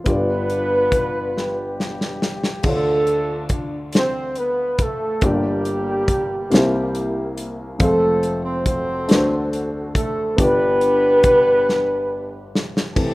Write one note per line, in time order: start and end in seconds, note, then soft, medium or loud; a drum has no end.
0.04 2.60 G1 medium
0.04 2.60 G2 medium
0.04 2.59 B3 medium
0.04 1.37 B3 medium
0.04 2.60 F4 soft
0.04 2.18 F4 medium
0.04 2.61 G4 soft
0.04 2.17 B4 loud
0.04 kick medium
0.04 closed hi-hat medium
0.08 1.37 D4 medium
0.08 2.62 D5 medium
0.50 closed hi-hat soft
0.92 kick medium
0.92 closed hi-hat medium
1.37 2.61 G3 medium
1.37 2.61 B3 medium
1.37 2.62 D4 medium
1.37 2.61 G4 medium
1.37 snare soft
1.80 snare medium
2.01 snare medium
2.22 snare medium
2.44 snare medium
2.63 5.19 D2 medium
2.63 5.19 D3 medium
2.63 5.17 A3 medium
2.63 3.51 A3 medium
2.63 5.18 D4 soft
2.63 3.79 D4 medium
2.63 5.19 F4 soft
2.63 3.51 A4 medium
2.63 kick medium
2.63 crash medium
2.67 3.79 F4 medium
2.67 2.73 C#5 soft
2.75 5.23 D5 medium
3.07 closed hi-hat soft
3.49 kick medium
3.49 closed hi-hat medium
3.93 4.35 C4 medium
3.93 4.35 C5 medium
3.93 snare medium
3.93 closed hi-hat medium
4.36 4.80 B3 medium
4.36 4.80 B4 medium
4.36 closed hi-hat soft
4.79 kick medium
4.79 closed hi-hat medium
4.83 5.24 A3 medium
4.83 5.24 A4 medium
5.21 6.47 G1 medium
5.21 6.48 G2 medium
5.21 6.52 G3 medium
5.21 6.49 A#3 medium
5.21 6.48 A#3 medium
5.21 6.51 D4 medium
5.21 6.48 D4 medium
5.21 6.50 G4 soft
5.21 6.52 G4 medium
5.21 6.52 D5 medium
5.21 kick medium
5.21 closed hi-hat medium
5.65 closed hi-hat soft
6.08 kick medium
6.08 closed hi-hat medium
6.50 7.76 C2 medium
6.50 7.76 C3 medium
6.50 7.34 G3 medium
6.50 7.80 A#3 medium
6.50 6.57 D#4 soft
6.50 7.77 E4 medium
6.50 7.80 G4 medium
6.50 7.34 G4 medium
6.50 7.80 C5 medium
6.50 snare medium
6.50 closed hi-hat medium
6.55 7.78 A#3 medium
6.55 7.83 E4 medium
6.95 closed hi-hat soft
7.38 closed hi-hat medium
7.79 9.05 F1 medium
7.79 9.05 F2 medium
7.79 7.86 G#3 soft
7.79 8.41 A3 medium
7.79 9.09 C4 medium
7.79 8.43 C4 medium
7.79 9.06 F4 medium
7.79 8.41 A4 medium
7.79 9.10 C5 medium
7.79 9.09 F5 medium
7.79 kick medium
7.79 closed hi-hat medium
7.86 9.06 A3 medium
8.23 closed hi-hat soft
8.43 8.64 C4 medium
8.43 8.64 C5 medium
8.65 9.48 C4 medium
8.65 9.92 F#4 medium
8.65 9.92 A4 medium
8.65 9.48 C5 loud
8.65 kick medium
8.65 closed hi-hat medium
9.08 10.34 D2 medium
9.08 10.34 D3 medium
9.08 10.37 A3 medium
9.08 10.36 D4 medium
9.08 10.38 F#4 medium
9.08 9.16 B4 soft
9.08 snare loud
9.08 closed hi-hat medium
9.17 10.42 C5 medium
9.53 closed hi-hat soft
9.95 10.35 A3 medium
9.95 10.35 A4 medium
9.95 kick medium
9.95 closed hi-hat medium
10.36 12.93 G1 medium
10.36 12.93 G2 medium
10.36 12.91 B3 medium
10.36 12.53 B3 loud
10.36 12.92 D4 medium
10.36 12.50 D4 medium
10.36 12.49 G4 medium
10.36 12.93 G4 medium
10.36 12.53 B4 loud
10.36 kick medium
10.36 closed hi-hat medium
10.41 12.94 D5 medium
10.81 closed hi-hat soft
11.23 kick medium
11.23 closed hi-hat medium
11.69 snare soft
12.55 snare medium
12.77 snare medium
12.95 13.14 C3 soft
12.95 13.14 E3 medium
12.95 13.14 E3 soft
12.95 13.14 A3 soft
12.95 13.14 C4 medium
12.95 13.14 G4 medium
12.95 13.14 A4 medium
12.95 kick medium
12.95 crash medium